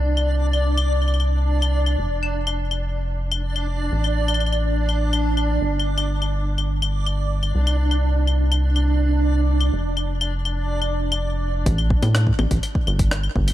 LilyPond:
<<
  \new Staff \with { instrumentName = "Synth texture" } { \time 4/4 \key g \mixolydian \tempo 4 = 124 <d' d''>1~ | <d' d''>1~ | <d' d''>1~ | <d' d''>1~ |
<d' d''>1~ | <d' d''>1 | r1 | }
  \new Staff \with { instrumentName = "Analog synth bass" } { \clef bass \time 4/4 \key g \mixolydian c,1 | f,,1 | a,,2.~ a,,8 g,,8~ | g,,2.~ g,,8 c,8~ |
c,1 | f,,1 | a,,8 r16 a,8 r16 a,,16 a,,16 r8 g,,8. r16 g,,16 r16 | }
  \new DrumStaff \with { instrumentName = "Drums" } \drummode { \time 4/4 r16 cl8. cl8 cl8 cl32 cl32 cl32 cl8 r32 r16 cl8 cl16 | r8 cl8 cl8 cl8 r8. cl16 r16 cl8. | r16 cl8 cl32 cl32 cl32 cl32 cl8. cl8 cl8 cl8. r32 cl32 | r16 cl8 cl16 r8 cl8 cl8 cl8 r16 cl8 cl16 |
r16 cl8. cl8 cl8 cl4 r8. cl16 | r8 cl8 cl8 cl8 r16 cl8 r32 cl32 r4 | <hh bd>16 cl16 bd16 <cl hh tommh>16 <hh ss>16 bd16 <cl tommh>16 <hh bd>16 <cl hh>16 bd16 cl16 <hh bd>16 <hh ss>16 cl16 bd16 <cl hh>16 | }
>>